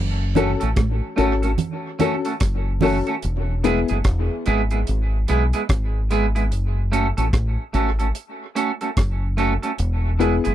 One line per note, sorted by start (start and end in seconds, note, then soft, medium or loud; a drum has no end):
0.00 0.54 F#1 loud
0.35 0.50 A3 medium
0.35 0.60 C#4 medium
0.35 0.50 C#4 medium
0.35 0.60 F#4 medium
0.35 0.51 F#4 medium
0.35 0.51 A4 medium
0.35 0.61 A4 loud
0.35 closed hi-hat medium
0.35 low conga medium
0.60 0.76 A1 medium
0.60 0.69 A3 medium
0.60 0.68 C#4 medium
0.60 0.68 F#4 medium
0.60 0.68 A4 medium
0.60 closed hi-hat medium
0.76 1.00 A1 medium
0.76 kick loud
0.76 cross-stick loud
0.76 closed hi-hat medium
0.76 high conga medium
1.16 1.55 G#1 medium
1.16 1.31 A3 medium
1.16 1.42 C#4 loud
1.16 1.32 C#4 medium
1.16 1.32 F#4 medium
1.16 1.42 F#4 medium
1.16 1.32 A4 medium
1.16 1.42 A4 medium
1.16 closed hi-hat medium
1.42 1.51 A3 soft
1.42 1.50 C#4 medium
1.42 1.50 F#4 soft
1.42 1.50 A4 medium
1.42 1.50 A4 soft
1.42 closed hi-hat medium
1.58 closed hi-hat medium
1.58 low conga medium
1.99 2.14 A3 medium
1.99 2.14 C#4 medium
1.99 2.24 C#4 loud
1.99 2.15 F#4 medium
1.99 2.25 F#4 medium
1.99 2.15 A4 loud
1.99 2.25 A4 loud
1.99 closed hi-hat medium
1.99 low conga medium
2.25 2.33 A3 medium
2.25 2.33 C#4 medium
2.25 2.33 F#4 medium
2.25 2.32 A4 medium
2.25 closed hi-hat soft
2.40 3.00 F#1 medium
2.40 kick loud
2.40 cross-stick loud
2.40 closed hi-hat loud
2.81 2.96 A3 medium
2.81 3.06 C#4 loud
2.81 2.96 C#4 medium
2.81 3.07 F#4 medium
2.81 2.97 F#4 medium
2.81 2.97 A4 medium
2.81 3.07 A4 loud
2.81 open hi-hat medium
2.81 low conga medium
3.07 3.15 A3 medium
3.07 3.15 C#4 medium
3.07 3.14 F#4 medium
3.07 3.14 A4 medium
3.07 closed hi-hat medium
3.22 3.82 E1 medium
3.22 closed hi-hat medium
3.64 3.78 G#3 medium
3.64 3.88 B3 loud
3.64 3.79 B3 medium
3.64 3.89 E4 medium
3.64 3.79 E4 medium
3.64 3.89 G#4 loud
3.64 3.79 G#4 medium
3.64 closed hi-hat medium
3.88 4.04 F#1 medium
3.88 3.97 G#3 soft
3.88 3.97 B3 medium
3.88 3.97 E4 medium
3.88 3.96 G#4 medium
3.88 closed hi-hat medium
4.04 4.28 E1 medium
4.04 kick loud
4.04 cross-stick loud
4.04 closed hi-hat medium
4.46 4.83 G#1 medium
4.46 4.61 G#3 medium
4.46 4.61 B3 medium
4.46 4.61 E4 medium
4.46 4.61 G#4 loud
4.46 closed hi-hat medium
4.71 4.79 G#3 soft
4.71 4.79 B3 soft
4.71 4.79 E4 medium
4.71 4.78 G#4 medium
4.71 closed hi-hat medium
4.87 5.24 G#1 loud
4.87 closed hi-hat medium
5.28 5.51 B1 loud
5.28 5.43 G#3 medium
5.28 5.43 B3 medium
5.28 5.43 E4 medium
5.28 5.43 G#4 medium
5.28 closed hi-hat medium
5.53 5.61 G#3 medium
5.53 5.61 B3 medium
5.53 5.61 E4 medium
5.53 5.61 G#4 medium
5.53 closed hi-hat soft
5.69 6.53 G#1 medium
5.69 kick loud
5.69 cross-stick loud
5.69 closed hi-hat loud
6.11 6.25 G#3 medium
6.11 6.25 B3 medium
6.11 6.25 E4 medium
6.11 6.26 G#4 loud
6.11 closed hi-hat medium
6.35 6.43 G#3 medium
6.35 6.43 B3 medium
6.35 6.43 E4 medium
6.35 6.42 G#4 medium
6.35 closed hi-hat medium
6.52 7.11 F#1 loud
6.52 closed hi-hat medium
6.92 7.06 A3 medium
6.92 7.07 C#4 medium
6.92 7.07 F#4 medium
6.92 7.07 A4 medium
6.92 closed hi-hat medium
7.17 7.32 A1 medium
7.17 7.25 A3 medium
7.17 7.25 C#4 medium
7.17 7.25 F#4 medium
7.17 7.24 A4 medium
7.17 closed hi-hat medium
7.33 7.56 A1 medium
7.33 kick loud
7.33 cross-stick loud
7.33 closed hi-hat medium
7.73 8.11 G#1 medium
7.73 7.88 A3 medium
7.73 7.89 C#4 medium
7.73 7.89 F#4 medium
7.73 7.89 A4 medium
7.73 closed hi-hat medium
7.99 8.07 A3 soft
7.99 8.07 C#4 medium
7.99 8.07 F#4 soft
7.99 8.06 A4 medium
7.99 closed hi-hat medium
8.15 closed hi-hat medium
8.55 8.70 A3 medium
8.55 8.70 C#4 medium
8.55 8.71 F#4 medium
8.55 8.71 A4 medium
8.55 closed hi-hat medium
8.81 8.89 A3 medium
8.81 8.89 C#4 medium
8.81 8.89 F#4 medium
8.81 8.88 A4 medium
8.81 closed hi-hat soft
8.97 9.56 F#1 medium
8.97 kick loud
8.97 cross-stick loud
8.97 closed hi-hat loud
9.37 9.52 A3 medium
9.37 9.52 C#4 medium
9.37 9.53 F#4 loud
9.37 9.53 A4 medium
9.37 closed hi-hat medium
9.62 9.71 A3 medium
9.62 9.70 C#4 medium
9.62 9.70 F#4 medium
9.62 9.70 A4 medium
9.62 closed hi-hat medium
9.78 10.38 E1 loud
9.78 closed hi-hat medium
10.19 10.34 G#3 medium
10.19 10.44 B3 loud
10.19 10.34 B3 medium
10.19 10.44 E4 medium
10.19 10.35 E4 medium
10.19 10.35 G#4 medium
10.19 10.45 G#4 loud
10.19 closed hi-hat medium
10.44 10.55 F#1 medium
10.44 10.53 G#3 medium
10.44 10.52 B3 medium
10.44 10.52 E4 medium
10.44 10.52 G#4 medium
10.44 closed hi-hat medium